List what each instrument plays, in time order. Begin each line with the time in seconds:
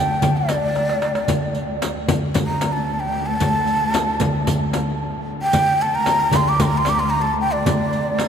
Already playing: cello section D2, ney G5
0.22 riq, darbuka dum, frame drum
0.37 ney D5
0.49 riq, darbuka tek, frame drum
0.75 riq, darbuka tek
0.89 darbuka ka
1.02 riq, darbuka tek
1.15 riq, darbuka ka
1.28 cello section D2, riq, darbuka dum, frame drum
1.55 riq, darbuka ka
1.82 riq, darbuka tek, frame drum
1.96 darbuka ka
2.08 riq, darbuka dum, frame drum
2.34 riq, frame drum, darbuka dum
2.46 ney A#5
2.61 riq, darbuka tek, frame drum
2.72 ney A5
3.00 ney G5
3.26 ney A5
3.40 riq, frame drum, darbuka dum
3.67 riq, darbuka ka
3.94 riq, darbuka tek, frame drum
4.08 darbuka ka
4.20 riq, darbuka dum, frame drum
4.47 riq, frame drum, darbuka dum
4.73 riq, darbuka tek, frame drum
5.42 ney G5
5.53 cello section D2, riq, darbuka dum, frame drum
5.80 ney A5, darbuka ka
5.95 ney A#5
6.06 riq, darbuka tek, frame drum
6.19 darbuka ka
6.32 riq, darbuka dum, frame drum
6.36 ney C6
6.48 ney D6
6.59 ney C6, riq, darbuka dum, frame drum
6.64 ney A#5
6.78 ney C6
6.85 riq, darbuka tek, frame drum
6.89 ney D6
6.99 ney C6
7.10 ney A#5
7.22 ney A5
7.40 ney G5
7.53 ney D5
7.66 riq, darbuka dum, frame drum
7.80 darbuka ka
7.92 riq, darbuka ka
8.19 riq, darbuka tek, frame drum